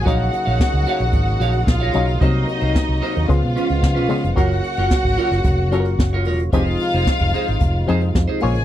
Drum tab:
HH |x-xx-xxxxxxx-xxx|x-xx-xoxx-xx-xox|xxxx--xxx-xx-xox|x-xx-xxxx-xx-xox|
SD |----o-------o---|----o-------o---|----o--o----o---|----o-------o---|
BD |o---o---o---o---|o---o---o---o---|o---oo--o---o---|o---oo--o---o---|